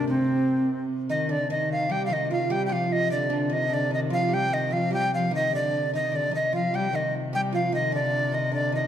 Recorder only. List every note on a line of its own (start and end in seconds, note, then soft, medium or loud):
0.09 0.85 C4 medium
1.10 1.32 D#5 loud
1.31 1.50 D5 loud
1.52 1.69 D#5 medium
1.72 1.93 F5 medium
1.92 2.05 G5 loud
2.06 2.14 F5 medium
2.13 2.31 D#5 loud
2.32 2.53 F5 medium
2.52 2.66 G5 loud
2.66 2.74 G5 medium
2.73 2.94 F5 loud
2.92 3.11 D#5 loud
3.12 3.54 D5 medium
3.53 3.75 D#5 medium
3.74 3.93 D5 loud
3.94 4.00 D#5 medium
4.13 4.35 F5 medium
4.34 4.55 G5 loud
4.54 4.74 D#5 medium
4.73 4.92 F5 medium
4.94 5.12 G5 loud
5.14 5.32 F5 medium
5.35 5.52 D#5 loud
5.55 5.91 D5 medium
5.95 6.17 D#5 medium
6.16 6.34 D5 medium
6.35 6.53 D#5 medium
6.55 6.77 F5 medium
6.75 6.97 G5 medium
6.95 7.14 D#5 medium
7.35 7.41 G5 loud
7.55 7.72 F5 medium
7.75 7.92 D#5 medium
7.95 8.36 D5 medium
8.34 8.53 D#5 medium
8.54 8.72 D5 loud
8.75 8.87 D#5 medium